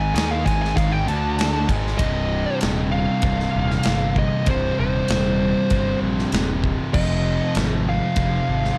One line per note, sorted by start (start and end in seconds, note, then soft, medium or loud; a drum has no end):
0.00 0.11 G#1 medium
0.00 0.14 G#2 medium
0.00 0.13 D#3 loud
0.00 0.14 G#3 loud
0.00 0.14 G#5 loud
0.14 0.44 D#2 loud
0.14 0.45 D#3 loud
0.14 0.45 A#3 medium
0.14 0.45 D#4 loud
0.14 0.31 G#5 medium
0.14 snare loud
0.14 ride loud
0.31 0.46 F5 loud
0.46 0.75 G#1 medium
0.46 0.76 G#2 loud
0.46 0.77 D#3 loud
0.46 0.77 G#3 loud
0.46 0.61 G#5 medium
0.46 kick loud
0.46 ride medium
0.62 0.76 G#5 loud
0.62 snare soft
0.77 1.06 G#1 loud
0.77 1.08 G#2 loud
0.77 1.08 D#3 loud
0.77 1.09 G#3 loud
0.77 0.92 F5 loud
0.77 kick loud
0.77 ride loud
0.92 1.08 G5 loud
1.07 1.65 D2 medium
1.07 1.69 D3 medium
1.07 1.70 A3 loud
1.07 1.70 D4 loud
1.07 1.68 A5 loud
1.07 ride medium
1.39 snare loud
1.39 ride loud
1.69 1.98 G#1 loud
1.69 2.00 G#2 loud
1.69 2.00 D#3 loud
1.69 2.01 G#3 loud
1.69 kick loud
1.69 ride medium
1.87 snare soft
1.98 2.44 C1 loud
1.98 3.23 C2 medium
1.98 2.57 D#5 loud
1.98 kick loud
1.98 ride bell medium
2.03 3.23 G2 loud
2.03 3.27 C3 loud
2.61 3.06 D#1 medium
2.61 snare loud
2.61 ride bell medium
2.92 4.18 F5 loud
3.22 3.46 C1 loud
3.22 4.46 C2 medium
3.22 4.46 G2 medium
3.22 kick loud
3.22 ride bell medium
3.27 4.47 C3 medium
3.40 snare soft
3.55 3.77 D#1 loud
3.71 snare soft
3.83 4.30 G1 medium
3.83 snare loud
3.83 ride bell medium
4.16 4.49 D#5 loud
4.16 kick loud
4.46 4.69 C1 medium
4.46 5.69 C2 medium
4.46 5.70 G2 medium
4.46 4.79 C5 medium
4.46 kick loud
4.46 ride bell medium
4.51 5.71 C3 loud
4.79 5.01 D#1 loud
4.79 5.99 C5 medium
5.08 5.53 D#1 medium
5.08 snare loud
5.08 ride bell medium
5.70 5.93 G1 loud
5.70 6.93 C2 loud
5.70 6.94 G2 medium
5.70 kick loud
5.70 ride bell medium
5.76 6.95 C3 loud
6.02 6.24 A#1 medium
6.19 snare soft
6.32 6.76 D#1 medium
6.32 snare loud
6.32 ride bell medium
6.64 kick loud
6.94 7.38 F1 loud
6.94 8.15 F2 loud
6.94 8.16 C3 loud
6.94 8.19 F3 loud
6.94 7.52 D#5 loud
6.94 kick loud
6.94 crash loud
7.55 7.99 G#1 medium
7.55 snare loud
7.55 ride bell medium
7.89 8.78 F5 loud
8.15 8.39 F1 loud
8.15 8.78 F2 medium
8.15 8.78 C3 medium
8.15 8.78 F3 loud
8.15 kick loud
8.15 ride bell medium
8.49 8.70 G#1 medium
8.65 snare soft